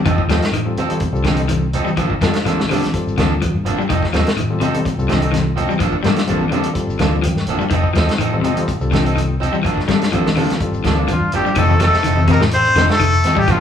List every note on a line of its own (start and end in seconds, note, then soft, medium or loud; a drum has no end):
0.05 0.16 F1 medium
0.05 0.25 D#3 medium
0.05 0.21 F3 medium
0.05 0.21 C4 medium
0.05 0.21 D#4 medium
0.05 0.21 A4 medium
0.05 kick medium
0.05 closed hi-hat medium
0.05 shekere medium
0.18 kick medium
0.27 0.38 D#2 medium
0.27 0.49 F3 medium
0.27 0.45 F3 medium
0.27 0.49 G3 medium
0.27 0.49 C4 medium
0.27 0.45 C4 medium
0.27 0.45 D#4 medium
0.27 0.49 F4 medium
0.27 0.49 A4 medium
0.27 0.45 A4 medium
0.27 snare medium
0.27 closed hi-hat soft
0.27 high conga medium
0.27 shekere medium
0.42 snare medium
0.42 closed hi-hat medium
0.42 shekere soft
0.51 0.71 A1 medium
0.51 0.73 D#3 medium
0.51 closed hi-hat medium
0.51 shekere medium
0.65 0.78 G3 medium
0.65 0.78 C4 medium
0.65 0.78 F4 medium
0.65 0.78 A4 medium
0.77 0.93 F3 medium
0.77 0.93 C4 medium
0.77 0.93 A4 medium
0.77 muted clean electric guitar stroke medium
0.77 closed hi-hat soft
0.77 high conga medium
0.77 low conga medium
0.77 shekere soft
0.89 1.02 G3 medium
0.89 1.02 C4 medium
0.89 1.02 F4 medium
0.89 1.02 A4 medium
0.89 closed hi-hat soft
0.89 high conga medium
1.00 kick medium
1.00 closed hi-hat medium
1.00 low conga medium
1.00 shekere medium
1.13 1.79 C2 medium
1.13 1.65 G3 medium
1.13 1.65 C4 medium
1.13 1.65 F4 medium
1.13 1.66 A4 medium
1.13 shekere medium
1.24 1.44 D3 medium
1.24 1.40 F3 medium
1.24 1.41 C4 medium
1.24 1.41 D#4 medium
1.24 1.41 A4 medium
1.24 kick medium
1.24 snare medium
1.24 closed hi-hat soft
1.24 high conga medium
1.24 shekere medium
1.36 closed hi-hat soft
1.36 shekere soft
1.48 1.68 D#3 medium
1.48 closed hi-hat medium
1.48 high conga medium
1.48 shekere medium
1.73 1.88 F3 medium
1.73 1.89 C4 medium
1.73 1.89 D#4 medium
1.73 1.89 A4 medium
1.73 closed hi-hat soft
1.73 low conga medium
1.73 shekere soft
1.85 1.94 G3 medium
1.85 high conga medium
1.85 shekere medium
1.97 2.16 G1 loud
1.97 2.17 F3 medium
1.97 2.12 F3 medium
1.97 2.12 A#3 medium
1.97 2.13 D4 medium
1.97 2.13 A4 medium
1.97 kick medium
1.97 closed hi-hat medium
1.97 shekere medium
2.10 kick medium
2.21 2.40 G2 medium
2.21 2.36 F3 medium
2.21 2.41 G3 medium
2.21 2.35 G3 medium
2.21 2.36 A#3 medium
2.21 2.35 C4 medium
2.21 2.36 D4 medium
2.21 2.35 F4 medium
2.21 2.35 A4 medium
2.21 2.37 A4 medium
2.21 kick medium
2.21 snare medium
2.21 closed hi-hat medium
2.21 high conga medium
2.21 shekere medium
2.33 snare medium
2.33 closed hi-hat soft
2.33 shekere soft
2.45 2.64 A#1 medium
2.45 2.65 F3 medium
2.45 2.60 F3 medium
2.45 2.59 G3 medium
2.45 2.60 A#3 medium
2.45 2.59 C4 medium
2.45 2.60 D4 medium
2.45 2.59 F4 medium
2.45 2.59 A4 medium
2.45 2.61 A4 medium
2.45 snare soft
2.45 closed hi-hat medium
2.45 high conga medium
2.45 shekere medium
2.60 snare medium
2.60 high conga medium
2.69 2.88 D3 medium
2.69 2.84 F3 medium
2.69 2.83 G3 medium
2.69 2.85 A#3 medium
2.69 2.83 C4 medium
2.69 2.85 D4 medium
2.69 2.83 F4 medium
2.69 2.83 G4 medium
2.69 2.85 A4 medium
2.69 snare soft
2.69 open hi-hat medium
2.69 high conga medium
2.69 low conga medium
2.69 shekere soft
2.83 snare soft
2.83 closed hi-hat medium
2.83 high conga medium
2.93 3.45 G3 medium
2.93 3.46 C4 medium
2.93 3.46 F4 medium
2.93 3.46 A4 medium
2.93 muted fingered electric bass stroke soft
2.93 kick medium
2.93 closed hi-hat medium
2.93 shekere medium
3.07 3.15 G1 medium
3.07 shekere medium
3.18 3.46 D2 medium
3.18 3.37 D#3 medium
3.18 3.32 F3 medium
3.18 3.32 A#3 medium
3.18 3.33 D4 medium
3.18 3.33 A4 medium
3.18 kick medium
3.18 snare medium
3.18 closed hi-hat soft
3.18 high conga medium
3.18 shekere medium
3.32 shekere soft
3.42 3.61 F3 medium
3.42 kick medium
3.42 closed hi-hat medium
3.42 high conga medium
3.42 shekere medium
3.54 3.63 G2 medium
3.63 3.74 G1 medium
3.63 3.80 F3 medium
3.63 3.80 A#3 medium
3.63 3.80 D4 medium
3.63 3.81 A4 medium
3.63 closed hi-hat soft
3.63 shekere soft
3.68 low conga medium
3.79 3.87 G3 medium
3.79 shekere medium
3.89 3.99 F1 medium
3.89 4.08 D#3 medium
3.89 4.04 F3 medium
3.89 4.04 C4 medium
3.89 4.04 D#4 medium
3.89 4.04 A4 medium
3.89 kick medium
3.89 closed hi-hat medium
3.89 shekere medium
4.02 kick medium
4.02 snare soft
4.12 4.23 D#2 medium
4.12 4.32 F3 medium
4.12 4.28 F3 medium
4.12 4.32 G3 medium
4.12 4.32 C4 medium
4.12 4.28 C4 medium
4.12 4.29 D#4 medium
4.12 4.33 F4 medium
4.12 4.33 A4 medium
4.12 4.29 A4 medium
4.12 snare medium
4.12 closed hi-hat soft
4.12 high conga medium
4.12 shekere medium
4.27 snare medium
4.27 closed hi-hat soft
4.36 4.55 A1 medium
4.36 4.56 D#3 medium
4.36 closed hi-hat medium
4.36 high conga medium
4.40 shekere medium
4.50 4.62 G3 medium
4.50 4.62 C4 medium
4.50 4.62 F4 medium
4.50 4.62 A4 medium
4.50 high conga medium
4.60 4.80 C3 medium
4.60 4.76 F3 medium
4.60 4.76 C4 medium
4.60 4.76 D#4 medium
4.60 4.77 A4 medium
4.60 closed hi-hat soft
4.60 high conga medium
4.60 low conga medium
4.60 shekere soft
4.74 4.86 G3 medium
4.74 4.86 C4 medium
4.74 4.86 F4 medium
4.74 4.86 A4 medium
4.74 closed hi-hat soft
4.74 high conga medium
4.85 kick medium
4.85 closed hi-hat medium
4.85 low conga medium
4.85 shekere medium
4.98 5.64 C2 medium
4.98 5.50 G3 medium
4.98 5.50 C4 medium
4.98 5.50 F4 medium
4.98 5.50 A4 medium
4.98 shekere medium
5.08 5.28 D3 medium
5.08 5.21 F3 medium
5.08 5.22 C4 medium
5.08 5.22 D#4 medium
5.08 5.21 A4 medium
5.08 kick medium
5.08 snare medium
5.08 closed hi-hat soft
5.08 high conga medium
5.08 shekere medium
5.22 5.36 C4 soft
5.22 5.36 D#4 soft
5.22 5.35 A4 medium
5.22 closed hi-hat soft
5.22 shekere soft
5.32 5.51 D#3 medium
5.32 snare soft
5.32 closed hi-hat medium
5.32 high conga medium
5.36 shekere medium
5.56 5.71 F3 medium
5.56 5.71 C4 medium
5.56 5.72 D#4 medium
5.56 5.72 A4 medium
5.56 closed hi-hat soft
5.56 low conga medium
5.56 shekere soft
5.69 5.78 G3 medium
5.69 high conga medium
5.69 shekere medium
5.79 5.99 G1 medium
5.79 5.99 F3 medium
5.79 5.96 F3 medium
5.79 5.96 A#3 medium
5.79 5.96 D4 medium
5.79 5.96 A4 medium
5.79 kick medium
5.79 closed hi-hat medium
5.79 shekere medium
5.93 kick medium
6.03 6.23 G2 medium
6.03 6.20 F3 medium
6.03 6.23 G3 medium
6.03 6.17 G3 medium
6.03 6.20 A#3 medium
6.03 6.18 C4 medium
6.03 6.20 D4 medium
6.03 6.18 F4 medium
6.03 6.18 A4 medium
6.03 6.20 A4 medium
6.03 snare medium
6.03 closed hi-hat soft
6.03 high conga medium
6.03 shekere medium
6.16 snare medium
6.16 closed hi-hat medium
6.27 6.47 A#1 medium
6.27 6.43 F3 medium
6.27 6.41 G3 medium
6.27 6.43 A#3 medium
6.27 6.41 C4 medium
6.27 6.44 D4 medium
6.27 6.41 F4 medium
6.27 6.42 A4 medium
6.27 6.44 A4 medium
6.27 closed hi-hat medium
6.27 high conga medium
6.27 shekere medium
6.41 high conga medium
6.49 6.70 D3 medium
6.49 6.67 F3 medium
6.49 6.65 G3 medium
6.49 6.68 A#3 medium
6.49 6.66 C4 medium
6.49 6.65 F4 medium
6.49 6.66 A4 medium
6.49 closed hi-hat soft
6.49 high conga medium
6.49 low conga medium
6.49 shekere soft
6.54 6.68 D4 medium
6.54 6.68 A4 medium
6.64 closed hi-hat soft
6.64 high conga medium
6.74 7.28 G3 medium
6.74 7.28 C4 medium
6.74 7.28 F4 medium
6.74 7.28 A4 medium
6.74 muted fingered electric bass stroke soft
6.74 kick medium
6.74 closed hi-hat medium
6.74 shekere medium
6.87 6.97 G1 medium
6.87 shekere medium
6.99 7.29 D2 medium
6.99 7.19 D#3 medium
6.99 7.15 F3 medium
6.99 7.15 A#3 medium
6.99 7.16 D4 medium
6.99 7.16 A4 medium
6.99 7.22 F5 medium
6.99 kick medium
6.99 snare medium
6.99 closed hi-hat soft
6.99 high conga medium
6.99 shekere medium
7.14 shekere soft
7.22 7.42 F3 medium
7.22 7.69 G5 medium
7.22 closed hi-hat medium
7.22 high conga medium
7.22 shekere medium
7.35 7.45 G2 medium
7.35 snare soft
7.47 7.57 G1 medium
7.47 7.63 F3 medium
7.47 7.64 A#3 medium
7.47 7.64 D4 medium
7.47 7.64 A4 medium
7.47 closed hi-hat soft
7.47 low conga medium
7.47 shekere soft
7.59 7.69 G3 medium
7.59 shekere medium
7.70 7.81 F1 medium
7.70 7.90 D#3 medium
7.70 7.87 C4 medium
7.70 7.88 D#4 medium
7.70 7.88 A4 medium
7.70 muted clean electric guitar stroke medium
7.70 kick medium
7.70 closed hi-hat medium
7.70 shekere medium
7.84 kick medium
7.93 8.05 D#2 medium
7.93 8.14 F3 medium
7.93 8.11 F3 medium
7.93 8.16 G3 medium
7.93 8.16 C4 medium
7.93 8.11 C4 medium
7.93 8.12 D#4 medium
7.93 8.16 F4 medium
7.93 8.16 A4 medium
7.93 8.12 A4 medium
7.93 snare medium
7.93 closed hi-hat soft
7.93 high conga medium
7.93 shekere medium
8.08 snare medium
8.08 closed hi-hat soft
8.08 shekere soft
8.18 8.38 A1 medium
8.18 8.39 D#3 medium
8.18 8.35 F3 medium
8.18 8.35 C4 medium
8.18 8.36 D#4 medium
8.18 8.36 A4 medium
8.18 closed hi-hat medium
8.18 shekere medium
8.33 8.45 G3 medium
8.33 8.45 C4 medium
8.33 8.46 F4 medium
8.33 8.46 A4 medium
8.33 high conga medium
8.41 8.62 C3 medium
8.41 8.59 F3 medium
8.41 8.60 C4 medium
8.41 8.60 D#4 medium
8.41 8.60 A4 medium
8.41 closed hi-hat soft
8.41 high conga medium
8.41 low conga medium
8.41 shekere soft
8.56 8.69 G3 medium
8.56 8.70 C4 medium
8.56 8.70 F4 medium
8.56 8.70 A4 medium
8.56 closed hi-hat soft
8.56 high conga medium
8.68 kick medium
8.68 closed hi-hat medium
8.68 low conga medium
8.68 shekere medium
8.80 9.47 C2 medium
8.80 9.33 G3 medium
8.80 9.33 C4 medium
8.80 9.33 F4 medium
8.80 9.33 A4 medium
8.80 shekere medium
8.91 9.11 D3 medium
8.91 9.05 F3 medium
8.91 9.05 C4 medium
8.91 9.04 D#4 medium
8.91 9.04 A4 medium
8.91 kick medium
8.91 snare medium
8.91 closed hi-hat soft
8.91 high conga medium
8.91 shekere medium
9.05 9.20 C4 soft
9.05 9.19 D#4 soft
9.05 9.19 A4 medium
9.05 closed hi-hat soft
9.05 shekere soft
9.16 9.35 D#3 medium
9.16 closed hi-hat medium
9.16 high conga medium
9.16 shekere medium
9.40 9.55 F3 medium
9.40 9.56 C4 medium
9.40 9.56 D#4 medium
9.40 9.56 A4 medium
9.40 closed hi-hat soft
9.40 low conga medium
9.40 shekere soft
9.53 9.62 G3 medium
9.53 high conga medium
9.53 shekere medium
9.63 9.84 G1 medium
9.63 9.83 F3 medium
9.63 9.79 F3 medium
9.63 9.80 A#3 medium
9.63 9.80 D4 medium
9.63 9.80 A4 medium
9.63 kick medium
9.63 closed hi-hat medium
9.63 shekere medium
9.77 kick medium
9.77 snare soft
9.88 10.07 G2 medium
9.88 10.04 F3 medium
9.88 10.07 G3 medium
9.88 10.02 G3 medium
9.88 10.04 A#3 medium
9.88 10.02 C4 medium
9.88 10.04 D4 medium
9.88 10.02 F4 medium
9.88 10.02 A4 medium
9.88 10.04 A4 medium
9.88 kick medium
9.88 snare medium
9.88 closed hi-hat soft
9.88 high conga medium
9.88 shekere medium
10.01 snare medium
10.01 closed hi-hat soft
10.01 shekere soft
10.11 10.32 A#1 medium
10.11 10.32 F3 medium
10.11 10.27 F3 medium
10.11 10.25 G3 medium
10.11 10.28 A#3 medium
10.11 10.26 C4 medium
10.11 10.28 D4 medium
10.11 10.26 F4 medium
10.11 10.26 A4 medium
10.11 10.28 A4 medium
10.11 closed hi-hat medium
10.11 high conga medium
10.11 shekere medium
10.26 snare medium
10.26 high conga medium
10.36 10.55 D3 medium
10.36 10.52 F3 medium
10.36 10.50 G3 medium
10.36 10.52 A#3 medium
10.36 10.50 C4 medium
10.36 10.52 D4 medium
10.36 10.51 F4 medium
10.36 10.51 A4 medium
10.36 10.52 A4 medium
10.36 open hi-hat medium
10.36 high conga medium
10.36 low conga medium
10.36 shekere soft
10.50 snare soft
10.50 closed hi-hat medium
10.50 high conga medium
10.60 11.13 G3 medium
10.60 11.13 C4 medium
10.60 11.14 F4 medium
10.60 11.14 A4 medium
10.60 muted fingered electric bass stroke soft
10.60 kick medium
10.60 closed hi-hat medium
10.60 shekere medium
10.71 10.81 G1 medium
10.71 shekere medium
10.84 11.14 D2 medium
10.84 11.03 D#3 medium
10.84 10.97 F3 medium
10.84 10.98 A#3 medium
10.84 10.97 D4 medium
10.84 10.98 A4 medium
10.84 kick medium
10.84 snare medium
10.84 closed hi-hat soft
10.84 high conga medium
10.84 shekere medium
10.98 11.12 A#3 soft
10.98 11.12 D4 soft
10.98 shekere soft
11.08 11.27 F3 medium
11.08 11.31 F3 medium
11.08 11.32 F4 medium
11.08 11.53 D5 medium
11.08 kick medium
11.08 closed hi-hat medium
11.08 high conga medium
11.08 shekere medium
11.20 11.29 G2 medium
11.32 11.43 G1 medium
11.32 11.48 F3 medium
11.32 11.61 G3 medium
11.32 11.48 A#3 medium
11.32 11.48 D4 medium
11.32 11.60 G4 medium
11.32 11.48 A4 medium
11.32 closed hi-hat medium
11.32 low conga medium
11.32 shekere soft
11.45 11.54 G3 medium
11.45 shekere medium
11.55 11.75 F1 loud
11.55 11.75 D#3 loud
11.55 11.72 F3 medium
11.55 11.72 C4 medium
11.55 11.72 D#4 medium
11.55 11.81 A4 medium
11.55 11.72 A4 medium
11.55 kick loud
11.55 closed hi-hat medium
11.55 high conga soft
11.55 low conga medium
11.55 shekere medium
11.60 11.80 A3 medium
11.68 high conga medium
11.68 shekere soft
11.80 11.90 F1 medium
11.80 11.99 F3 medium
11.80 11.96 F3 medium
11.80 12.25 A3 medium
11.80 11.96 C4 medium
11.80 11.96 D#4 medium
11.80 11.96 A4 medium
11.80 12.26 A4 loud
11.80 snare soft
11.80 closed hi-hat medium
11.80 high conga loud
11.80 shekere medium
11.93 snare soft
11.93 shekere soft
12.03 12.33 F1 medium
12.03 12.23 D#3 medium
12.03 12.20 F3 medium
12.03 12.20 C4 medium
12.03 12.20 D#4 medium
12.03 12.20 A4 medium
12.03 closed hi-hat medium
12.03 high conga soft
12.03 shekere medium
12.16 high conga medium
12.16 shekere soft
12.27 12.47 C3 medium
12.27 12.43 F3 medium
12.27 12.40 A#3 medium
12.27 12.43 C4 medium
12.27 12.43 D#4 medium
12.27 12.44 A4 medium
12.27 12.41 A#4 medium
12.27 kick medium
12.27 closed hi-hat medium
12.27 high conga medium
12.27 low conga medium
12.27 shekere medium
12.40 12.68 A1 medium
12.40 snare medium
12.40 high conga soft
12.40 low conga medium
12.51 12.87 C4 medium
12.51 12.87 C5 loud
12.51 closed hi-hat medium
12.51 shekere medium
12.65 closed hi-hat soft
12.65 shekere soft
12.76 12.86 F1 medium
12.76 12.95 D3 medium
12.76 12.91 F3 medium
12.76 12.91 C4 medium
12.76 12.91 D#4 medium
12.76 12.92 A4 medium
12.76 kick medium
12.76 snare medium
12.76 closed hi-hat soft
12.76 high conga loud
12.76 shekere medium
12.89 13.43 A3 medium
12.89 13.40 A4 loud
12.89 snare medium
12.89 closed hi-hat soft
12.89 shekere soft
12.99 13.19 F1 loud
12.99 13.19 D#3 medium
12.99 kick medium
12.99 closed hi-hat medium
12.99 shekere medium
13.13 closed hi-hat soft
13.24 13.39 F3 medium
13.24 13.39 C4 medium
13.24 13.40 D#4 medium
13.24 13.40 A4 medium
13.24 snare soft
13.24 closed hi-hat soft
13.24 high conga medium
13.24 shekere medium
13.35 13.46 A1 medium
13.35 13.45 G3 medium
13.35 13.53 G4 medium
13.35 kick medium
13.35 shekere soft
13.42 13.53 G3 medium
13.48 13.60 G1 loud
13.48 13.60 F3 medium
13.48 13.60 A#3 medium
13.48 13.60 D4 medium
13.48 13.60 F4 medium
13.48 13.60 A4 medium
13.48 kick loud
13.48 closed hi-hat medium
13.48 high conga soft
13.48 low conga medium
13.48 shekere medium